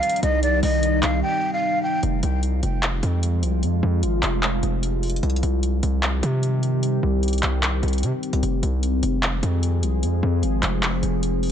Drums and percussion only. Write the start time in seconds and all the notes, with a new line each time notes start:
0.03 closed hi-hat
0.09 closed hi-hat
0.16 closed hi-hat
0.23 closed hi-hat
0.43 closed hi-hat
0.63 open hi-hat
0.83 closed hi-hat
1.03 clap, closed hi-hat
2.03 closed hi-hat
2.23 closed hi-hat
2.43 closed hi-hat
2.63 closed hi-hat
2.83 clap, closed hi-hat
3.03 closed hi-hat
3.23 closed hi-hat
3.43 closed hi-hat
3.63 closed hi-hat
4.03 closed hi-hat
4.23 clap, closed hi-hat
4.43 clap, closed hi-hat
4.63 closed hi-hat
4.83 closed hi-hat
5.03 closed hi-hat, open hi-hat
5.10 closed hi-hat
5.16 closed hi-hat
5.23 closed hi-hat
5.30 closed hi-hat
5.36 closed hi-hat
5.43 closed hi-hat
5.63 closed hi-hat
5.83 closed hi-hat
6.03 clap, closed hi-hat
6.23 closed hi-hat
6.43 closed hi-hat
6.63 closed hi-hat
6.83 closed hi-hat
7.23 closed hi-hat
7.28 closed hi-hat
7.33 closed hi-hat
7.38 closed hi-hat
7.43 clap, closed hi-hat
7.63 clap, closed hi-hat
7.83 closed hi-hat
7.88 closed hi-hat
7.93 closed hi-hat
7.98 closed hi-hat
8.03 closed hi-hat
8.23 closed hi-hat
8.33 closed hi-hat
8.43 closed hi-hat
8.63 closed hi-hat
8.83 closed hi-hat
9.03 closed hi-hat
9.23 clap, closed hi-hat
9.43 closed hi-hat
9.63 closed hi-hat
9.83 closed hi-hat
10.03 closed hi-hat
10.43 closed hi-hat
10.63 clap, closed hi-hat
10.83 clap, closed hi-hat
11.03 closed hi-hat
11.23 closed hi-hat
11.43 closed hi-hat, open hi-hat